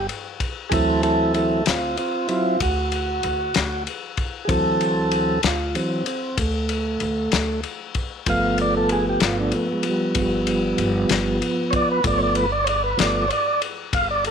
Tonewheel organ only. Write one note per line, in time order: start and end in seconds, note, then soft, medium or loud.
0.70 1.62 E3 medium
0.70 1.62 F#3 soft
0.70 1.62 C4 medium
0.70 1.02 E4 medium
0.70 0.73 G#4 medium
0.70 1.02 A4 loud
1.03 1.33 E4 medium
1.03 1.34 A4 medium
1.34 1.64 E4 medium
1.34 1.66 A4 medium
1.68 1.96 C4 medium
1.68 1.98 F4 medium
1.98 2.27 C4 medium
1.98 2.29 F4 medium
2.28 2.57 F#3 soft
2.28 2.59 C4 medium
2.28 2.57 E4 soft
2.28 2.61 F4 medium
2.62 3.84 F#4 medium
4.45 5.39 E3 soft
4.45 5.39 F#3 soft
4.45 5.39 C4 medium
4.45 4.49 G#4 medium
4.50 5.41 A4 loud
5.47 5.76 F4 medium
5.75 6.03 E3 soft
5.75 6.04 F#3 soft
5.75 6.06 C4 medium
6.07 6.38 C4 medium
6.39 7.61 A3 loud
8.27 12.00 F3 medium
8.27 9.54 A3 soft
8.27 12.01 B3 medium
8.27 8.59 F5 loud
8.61 8.75 D5 medium
8.77 8.90 A4 medium
8.92 9.06 G#4 medium
9.09 9.22 G4 medium
9.25 9.38 F4 medium
9.40 9.53 D4 medium
9.55 9.69 A3 medium
9.72 9.85 G#3 medium
9.89 10.18 G3 medium
10.22 11.41 G3 medium
11.71 11.74 C#5 medium
11.76 11.89 D5 loud
11.91 12.05 B4 medium
12.04 12.46 F3 medium
12.04 12.47 A3 medium
12.04 12.47 B3 medium
12.04 12.21 D5 medium
12.18 12.21 C#5 medium
12.23 12.36 D5 medium
12.37 12.51 B4 medium
12.52 12.66 D5 medium
12.64 12.68 C#5 medium
12.69 12.83 D5 medium
12.84 12.98 B4 medium
12.97 13.26 F3 soft
12.97 13.26 A3 soft
12.97 13.26 B3 soft
12.97 13.30 D5 medium
13.28 13.31 C#5 medium
13.33 13.62 D5 medium
13.94 14.08 F5 medium
14.11 14.24 D5 medium
14.27 14.31 A4 medium